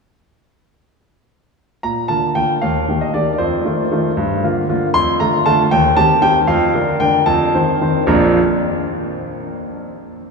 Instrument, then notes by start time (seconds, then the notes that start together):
grand piano
1.83 A#2 A#5
2.08 D3 A#3 F4 A5
2.35 D3 A#3 F4 G5
2.62 D#2 F5
2.88 D#3 A#3 G4
3.01 D#5
3.14 D#3 A#3 G4 D5
3.33 D5
3.38 F2 C5
3.65 D#3 A3 F4
3.91 D#3 A3 F4
4.17 G2
4.44 D3 A#3 F4
4.69 D3 A#3 F4
4.94 F2 C6
5.20 D3 A3 F4 A#5
5.46 D3 A3 F4 A5
5.71 D#2 G5
5.96 D#3 C4 G4 A5
6.22 D#3 C4 G4 G5
6.47 F2 F5
6.74 D3 D4 A#4
7.00 D3 D4 A#4 G5
7.26 F2 A5
7.54 D#3 C4 C5
7.81 D#3 C4 C5
8.07 A#1 F2 F3 A#3 D4 F4 A#5